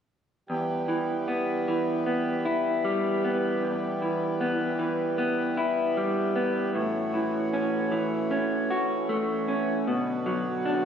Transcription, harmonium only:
0.49 E3 G3 B3 G4
6.76 A3 C#4 F#4
9.87 D3 F#3 B3

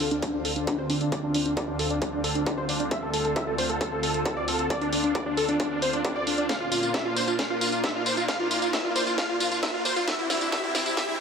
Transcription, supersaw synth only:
0.00 A4
0.11 D4
0.22 D4
0.34 D4
0.45 A4
0.56 D4
0.67 D4
0.78 C5
0.90 D4
1.01 D4
1.12 D5
1.24 D4
1.35 D4
1.46 D4
1.57 D5
1.68 D4
1.79 A4
1.90 D4
2.02 D4
2.13 D4
2.24 A4
2.35 D4
2.46 D4
2.58 C5
2.69 D4
2.80 D4
2.91 E5
3.03 A4
3.14 A4
3.25 A4
3.36 E5
3.47 A4
3.58 C5
3.70 A4
3.81 A4
3.92 A4
4.03 A4
4.15 A4
4.26 A4
4.37 D5
4.48 A4
4.59 A4
4.70 D5
4.82 D4
4.93 D4
5.04 D4
5.15 D5
5.26 D4
5.37 A4
5.49 D4
5.60 D4
5.71 D4
5.82 C5
5.93 D4
6.05 D4
6.16 D5
6.27 D4
6.38 D4
6.49 F5
6.60 F4
6.72 F4
6.83 F4
6.94 E5
7.05 F4
7.16 C5
7.28 F4
7.39 F5
7.50 F4
7.61 F4
7.73 F4
7.84 E5
7.95 F4
8.06 C5
8.17 F4
8.29 F5
8.40 F4
8.51 F4
8.62 F4
8.74 E5
8.85 F4
8.96 C5
9.07 F4
9.18 F5
9.29 F4
9.41 F4
9.52 F4
9.63 E5
9.74 F4
9.85 C5
9.96 F4
10.08 E5
10.19 E4
10.30 E4
10.42 E4
10.53 E5
10.64 E4
10.75 E4
10.86 E4
10.97 E5
11.09 E4

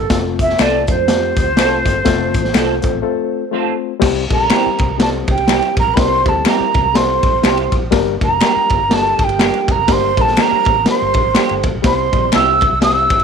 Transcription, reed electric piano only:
0.10 A3 C4 F4 A4
0.58 A3 C4 F4 A4
0.87 A3 C4 F4 A4
1.07 A3 C4 F4 G4
1.56 A3 C4 F4 G#4
1.63 A4
2.05 A3 C4 F4 A4
2.53 A3 C4 F4 A4
2.82 A3 C4 F4 A4
3.02 A3 C4 F4 A4
3.51 A3 C4 F4 C5
4.00 G3 C4 E4 G4 C5
4.30 G3 C4 E4 G4 A4
4.50 G3 C4 E4 G4 C5
4.98 G3 C4 E4 G4 C5
5.47 G3 C4 E4 G4 C5
5.95 G3 C4 E4 G4 A#4
6.24 G3 C4 E4 G4 C5
6.44 G3 C4 E4 G4 C5
6.93 G3 C4 E4 G4 A4
7.42 G3 C4 E4 G4 C5
7.91 G3 A#3 D4 G4 A#4
8.20 G3 A#3 D4 G4 A#4
8.41 G3 A#3 D4 G4 A#4
8.89 G3 A#3 D4 G4 A#4
9.38 G3 A#3 D4 G4 A4
9.45 A#4
9.87 G3 A#3 D4 G4 A#4
10.17 G3 A#3 D4 G4 A#4
10.36 G3 A3 D4 G4 C5
10.42 A#3
10.84 G3 A#3 D4 G4 A#4
11.35 G3 A#3 D4 G4 A4
11.83 G3 C4 E4 G4 C5
12.12 G3 C4 E4 G4 D5
12.32 G3 C4 E4 G4 C5
12.81 G3 C4 E4 G4 C5

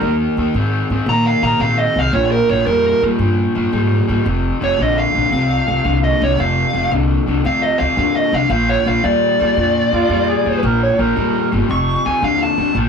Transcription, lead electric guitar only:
1.09 A#5
1.26 F5
1.43 A#5
1.61 F5
1.79 D#5
1.99 F5
2.14 C#5
2.31 A#4
2.50 C#5
2.66 A#4
4.64 C#5
4.82 D#5
4.99 F5
6.04 D#5
6.23 C#5
6.40 F5
7.46 F5
7.63 D#5
7.79 F5
7.99 F5
8.16 D#5
8.34 F5
8.50 F5
8.70 C#5
8.87 F5
9.05 D5
11.71 C#6
12.06 G#5
12.24 F5
12.43 A5

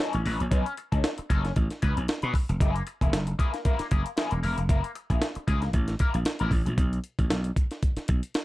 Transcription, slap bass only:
0.14 A1
0.26 A1
0.41 A#1
0.52 B1
0.92 C#2
1.19 muted slap bass stroke
1.30 F#1
1.56 A1
1.83 C#2
1.97 B1
2.23 B2
2.49 F1
2.61 F#1
3.01 E1
3.13 F#1
3.80 muted slap bass stroke
3.92 F#1
4.32 E1
4.44 E1
4.58 F1
4.69 F#1
5.10 A#1
5.36 muted slap bass stroke
5.48 C#2
5.74 A1
6.14 A#1
6.41 A1
6.51 A1
6.66 A#1
6.78 B1
7.19 A1
7.30 B1
7.97 muted slap bass stroke
8.09 B1

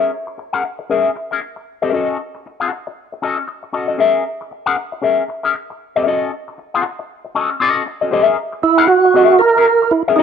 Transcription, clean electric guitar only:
Already playing: G#4 A#4 E5
0.27 muted clean electric guitar stroke
0.38 muted clean electric guitar stroke
0.53 C#4 G#4 A#4 F#5
0.64 muted clean electric guitar stroke
0.79 muted clean electric guitar stroke
0.90 C#4 G#4 A#4 E5
1.16 muted clean electric guitar stroke
1.31 C#4 G#4 A#4 E5
1.40 muted clean electric guitar stroke
1.56 muted clean electric guitar stroke
1.82 C#4 G#4 A#4 E5
1.93 C#4 F#4 A4 D#5
2.35 muted clean electric guitar stroke
2.46 muted clean electric guitar stroke
2.60 C#4 F#4 A4 F#5
2.71 muted clean electric guitar stroke
2.87 muted clean electric guitar stroke
3.12 muted clean electric guitar stroke
3.22 C#4 F#4 A4 D#5
3.38 muted clean electric guitar stroke
3.47 muted clean electric guitar stroke
3.63 muted clean electric guitar stroke
3.73 C#4 F#4 A4 D#5
3.88 C#4 F#4 A4 D#5
3.98 C#4 G#4 A#4 E5
4.41 muted clean electric guitar stroke
4.51 muted clean electric guitar stroke
4.66 C#4 G#4 A#4 F#5
4.77 muted clean electric guitar stroke
4.92 muted clean electric guitar stroke
5.02 C#4 G#4 A#4 E5
5.28 muted clean electric guitar stroke
5.43 C#4 G#4 A#4 E5
5.55 muted clean electric guitar stroke
5.70 muted clean electric guitar stroke
5.96 C#4 G#4 A#4 E5
6.06 C#4 F#4 A4 D#5
6.48 muted clean electric guitar stroke
6.58 muted clean electric guitar stroke
6.74 C#4 F#4 A4 F#5
6.85 muted clean electric guitar stroke
6.99 muted clean electric guitar stroke
7.25 muted clean electric guitar stroke
7.35 C#4 F#4 A4 D#5
7.50 muted clean electric guitar stroke
7.60 C#4 F#4 A4 D#5
7.86 muted clean electric guitar stroke
8.01 C#4 F#4 A4 D#5
8.11 C#4 G#4 A#4 E5
8.52 muted clean electric guitar stroke
8.62 muted clean electric guitar stroke
8.77 C#4 G#4 A#4 F#5
8.88 muted clean electric guitar stroke
9.05 muted clean electric guitar stroke
9.14 C#4 G#4 A#4 E5
9.40 muted clean electric guitar stroke
9.56 C#4 G#4 A#4 E5
9.67 muted clean electric guitar stroke
9.82 muted clean electric guitar stroke
10.08 C#4 G#4 A#4 E5
10.18 C#4 F#4 A4 D#5

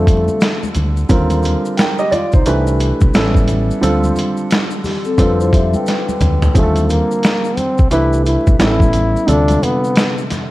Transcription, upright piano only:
Already playing: D3 G3 C4 F4 A4
1.09 D3 G3 C4 F4 A#4
1.77 A#4 G5
1.99 G4 D#5
2.11 F4 D5
2.34 D#4 C5
2.46 E3 A3 D4 G4 B4
3.15 G3 B3 C#4 E4 A4
3.81 D3 G3 C4 F4 A4
5.18 D3 G3 C4 F4 A4
6.54 D3 G3 C4 F4 G#4
6.63 A4
7.91 E3 A3 D4 G4 B4
8.59 G3 B3 C#4 E4 G4
8.66 A4
9.27 C3 D3 G3 F4 A4

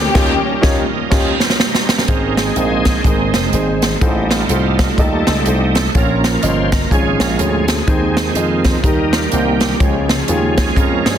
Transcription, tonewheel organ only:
Already playing: G#3 C4 D4 F4 A#4
0.16 F3 C#4 D#4 F4 A#4
0.22 G3
0.93 D#5
1.11 F5
1.41 G5
1.59 D#4 C5 A#5
1.89 C#4 A#4
2.08 G#3 C4 D#4
2.38 G#4
2.98 D4
3.05 D#4
4.01 G3 A3 D#4
4.29 F4
4.99 A4
5.76 A4
5.91 A4
5.97 F3 A#3 C#4 A#4
6.45 C5
6.75 A#4
6.93 F3 G#3 C#4 G#4
7.22 A#4
7.40 G#4
7.70 G#4
7.88 D#3 G#3 C4
8.32 E4
8.39 F4
8.84 D#3 G3 A#3 D#4
9.14 F4
9.34 G4
9.81 F3 G#3 C#4
10.57 G#4
10.76 A#4
11.05 G#4

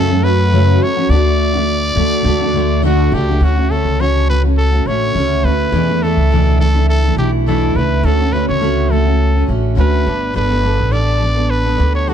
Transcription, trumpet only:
Already playing: A4
0.24 B4
0.83 C#5
1.10 D5
2.86 F#4
3.14 G4
3.44 F#4
3.71 A4
4.01 C#5
4.30 B4
4.57 A4
4.87 C#5
5.45 B4
6.03 A4
6.60 A4
6.90 A4
7.18 G4
7.48 A4
7.76 B4
8.05 A4
8.33 B4
8.49 C#5
8.92 A4
9.79 B4
10.36 B4
10.92 D5
11.50 B4
11.95 C#5
12.09 F#4

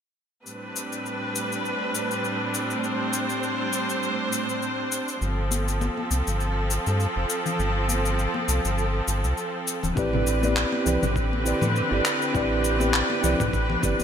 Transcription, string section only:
0.46 A2 G3 C4 D4 B4
2.84 C5
5.22 F3 C4 A4
9.97 D3 C4 G4 B4

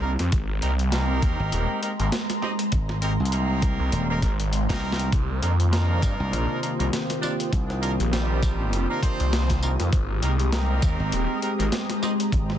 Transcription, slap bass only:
1.40 G#1
2.73 G#1
3.20 C2
3.92 D#1
4.70 C2
6.20 C2
7.53 C2
11.00 G#1
12.33 G#1

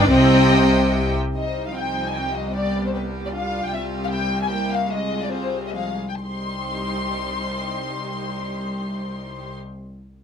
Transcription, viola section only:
0.01 D4
0.10 C4
1.35 G3 D#4
1.74 F3 C4
2.55 G3 B3
3.35 D4
3.72 G3 C4
4.51 A#3
4.92 G#3 C4
5.31 G3 C4
5.74 F3 G#3
6.19 G3 D#4

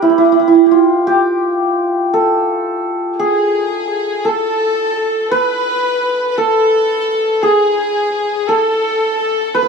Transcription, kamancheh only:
3.19 G#4
3.91 G#4
4.26 A4
4.96 A4
5.32 B4
6.38 A4
7.43 G#4
8.13 G#4
8.47 A4
9.19 A4
9.55 B4

